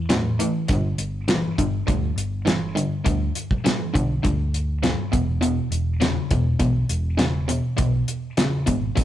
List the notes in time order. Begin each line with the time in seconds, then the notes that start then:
Already playing: E2
0.09 A2 F#3, snare, closed hi-hat
0.40 A2 E3, closed hi-hat
0.68 G1 G2 D3, kick, closed hi-hat
0.98 G1, closed hi-hat
1.28 G2 E3, snare, closed hi-hat
1.58 G1 G2 D3, kick, closed hi-hat
1.87 D2 G2 D3, kick, closed hi-hat
2.16 G1, closed hi-hat
2.46 G2 E3, snare, closed hi-hat
2.75 G2 D3, closed hi-hat
3.04 D2 G2 D3, kick, closed hi-hat
3.35 closed hi-hat
3.51 kick
3.64 G2 E3, snare, closed hi-hat
3.94 B1 G2 D3, kick, closed hi-hat
4.23 D2 G2 D3, kick, closed hi-hat
4.54 closed hi-hat
4.83 G2 E3, snare, closed hi-hat
5.12 E1 E2 B2, kick, closed hi-hat
5.41 E2 B2, closed hi-hat
5.71 E1, closed hi-hat
6.00 E2 C#3, snare, closed hi-hat
6.30 E1 E2 B2, kick, closed hi-hat
6.59 B1 E2 B2, kick, closed hi-hat
6.89 E1, closed hi-hat
7.17 E2 C#3, snare, closed hi-hat
7.49 E2 B2, closed hi-hat
7.77 B1 E2 B2, kick, closed hi-hat
8.08 closed hi-hat
8.37 E2 C#3, snare, closed hi-hat
8.66 G#1 E2 B2, kick, closed hi-hat
8.95 B1 E2 B2, kick, closed hi-hat